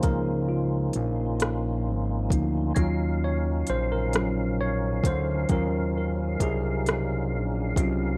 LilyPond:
<<
  \new Staff \with { instrumentName = "Tine electric piano" } { \time 6/8 \key ees \dorian \tempo 4. = 44 << { bes'8 f'4. r4 | r8 des''8 c''16 bes'8. des''8 c''8 | bes'8 bes'8 aes'8 r4. | } \\ { <f bes ees'>2~ <f bes ees'>8 <f bes ees'>8 | <ges des' f'>4. <ges des' f'>8 r4 | <ges des' f'>8 r2 <ges des' f'>8 | } >> }
  \new Staff \with { instrumentName = "Tonewheel organ" } { \time 6/8 \key ees \dorian <bes des' ees' f'>2. | <ges des' ees' f''>2.~ | <ges des' ees' f''>2. | }
  \new Staff \with { instrumentName = "Analog synth bass" } { \clef bass \time 6/8 \key ees \dorian des,4 bes,,4 aes,,8 d,8 | ees,4 bes,,4. d,8 | ees,4 c,4 bes,,8 c,8 | }
  \new DrumStaff \with { instrumentName = "Drums" } \drummode { \time 6/8 <hh bd>4 hh8 <hh ss>4 <hh bd>8 | <hh bd>4 hh8 <hh ss>4 <hh bd>8 | <hh bd>4 <hh bd>8 <hh ss>4 <hh bd>8 | }
>>